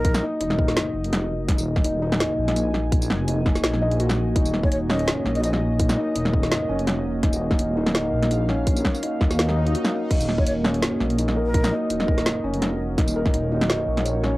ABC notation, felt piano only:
X:1
M:4/4
L:1/8
Q:"Swing 16ths" 1/4=167
K:Ebm
V:1 name="Felt piano"
E E E z4 z | E2 E E E z3 | z2 E2 E e G z | E z2 D3 E2 |
E E E z2 D3 | E2 E E E z2 D- | D2 E2 E E G z | E z2 D3 E B |
E E E z2 D3 | E B E E E z2 D |]